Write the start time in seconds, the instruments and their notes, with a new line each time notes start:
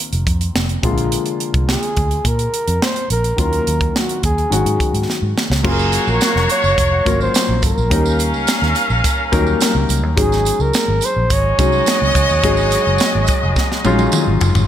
Already playing: grand piano D#3 F3 A#3 C4 F4
0.13 fingered electric bass F1, closed hi-hat
0.27 fingered electric bass F2, kick, closed hi-hat
0.41 closed hi-hat
0.55 fingered electric bass F1, snare
0.69 closed hi-hat
0.82 fingered electric bass A#1, grand piano C3 F3 G#3 A#3 F4, kick, closed hi-hat
0.89 grand piano D3
0.98 closed hi-hat
1.12 closed hi-hat
1.26 closed hi-hat
1.40 closed hi-hat
1.54 fingered electric bass C2, kick, closed hi-hat
1.69 flugelhorn G#4, snare
1.83 closed hi-hat
1.97 fingered electric bass D2, kick, closed hi-hat
2.11 closed hi-hat
2.25 fingered electric bass A#2, flugelhorn A#4, kick, closed hi-hat
2.39 closed hi-hat
2.54 closed hi-hat
2.68 fingered electric bass F2, closed hi-hat
2.82 flugelhorn C5, snare
2.96 closed hi-hat
3.10 fingered electric bass A#1, flugelhorn A#4, closed hi-hat
3.24 closed hi-hat
3.36 fingered electric bass D#2, grand piano D#3 F#3 A#3 C#4 F4, kick, closed hi-hat
3.41 flugelhorn A#4
3.53 closed hi-hat
3.67 fingered electric bass D#2, closed hi-hat
3.81 kick, closed hi-hat
3.96 flugelhorn F#4, snare
4.09 closed hi-hat
4.23 fingered electric bass D#2, flugelhorn G#4, kick, closed hi-hat
4.38 closed hi-hat
4.50 fingered electric bass G#1, grand piano D#3 F#3 G#3 C#4 F#4, closed hi-hat
4.65 fingered electric bass G#2, closed hi-hat
4.80 kick, closed hi-hat
4.94 fingered electric bass G#2, closed hi-hat
5.10 snare
5.22 fingered electric bass G#2
5.38 snare
5.50 fingered electric bass C#2, snare
5.63 fingered electric bass F#1, grand piano F#3 A#3 C#4 F4 G#4, horn section A#3 F#4 C#5, kick, crash
5.68 flugelhorn G#4, grand piano A#4
5.79 tambourine
5.92 closed hi-hat, tambourine
6.07 fingered electric bass A#1, flugelhorn A#4, tambourine
6.21 snare, closed hi-hat, tambourine
6.36 fingered electric bass F1, snare
6.49 flugelhorn C#5, closed hi-hat, tambourine
6.64 fingered electric bass F#1, tambourine
6.78 fingered electric bass F1, kick, closed hi-hat, tambourine
7.05 fingered electric bass G#1, grand piano F#3 A#3 C#4 F4 A#4, kick, closed hi-hat, tambourine
7.21 flugelhorn C5, tambourine
7.34 snare, closed hi-hat, tambourine
7.49 fingered electric bass A#1
7.62 fingered electric bass G#1, flugelhorn A#4, kick, closed hi-hat, tambourine
7.78 fingered electric bass A#1, tambourine
7.90 fingered electric bass D#2, grand piano G3 A#3 C#4 D#4 A#4, horn section C#4 A#4 F5, kick, closed hi-hat
8.06 tambourine
8.19 closed hi-hat, tambourine
8.34 fingered electric bass C#2, tambourine
8.47 snare, closed hi-hat, tambourine
8.62 fingered electric bass D#2, snare
8.75 closed hi-hat, tambourine
8.90 fingered electric bass A#1, tambourine
9.04 kick, closed hi-hat, tambourine
9.32 fingered electric bass D#2, grand piano F#3 A#3 C#4 D#4 A#4, kick, closed hi-hat, tambourine
9.38 grand piano G3
9.47 tambourine
9.60 snare, closed hi-hat, tambourine
9.75 fingered electric bass C#2
9.89 fingered electric bass C#2, closed hi-hat, tambourine
10.03 fingered electric bass D#2
10.16 fingered electric bass G#1, grand piano F#3 G#3 C#4 D#4 G#4, flugelhorn G#4, kick, closed hi-hat
10.32 snare, tambourine
10.45 closed hi-hat, tambourine
10.60 fingered electric bass C#2, flugelhorn A#4, tambourine
10.73 snare, closed hi-hat, tambourine
10.88 fingered electric bass G#1
11.01 closed hi-hat, tambourine
11.05 flugelhorn C5
11.16 fingered electric bass A#1
11.30 fingered electric bass G#1, horn section G#3 F#4 D#5, flugelhorn C#5, kick, closed hi-hat, tambourine
11.58 fingered electric bass C2, grand piano F#3 G#3 C#4 D#4 G#4, kick, closed hi-hat, tambourine
11.72 tambourine
11.86 snare, closed hi-hat, tambourine
12.02 fingered electric bass C#2
12.14 fingered electric bass C#2, kick, closed hi-hat, tambourine
12.30 fingered electric bass D#2, tambourine
12.43 fingered electric bass G#1, grand piano F#3 G#3 C#4 D#4 G#4, kick, closed hi-hat
12.57 tambourine
12.71 closed hi-hat, tambourine
12.87 fingered electric bass F#1
12.98 snare, closed hi-hat, tambourine
13.15 fingered electric bass G#1
13.27 kick, closed hi-hat, tambourine
13.43 fingered electric bass F1
13.56 kick, snare, tambourine
13.72 snare
13.85 fingered electric bass A#1, grand piano F#3 G#3 C#4 D#4 F4, high tom, tambourine
13.98 high tom, tambourine
14.12 mid tom, tambourine
14.27 fingered electric bass G#1
14.41 fingered electric bass F#1, floor tom, tambourine
14.55 fingered electric bass G#1, floor tom, tambourine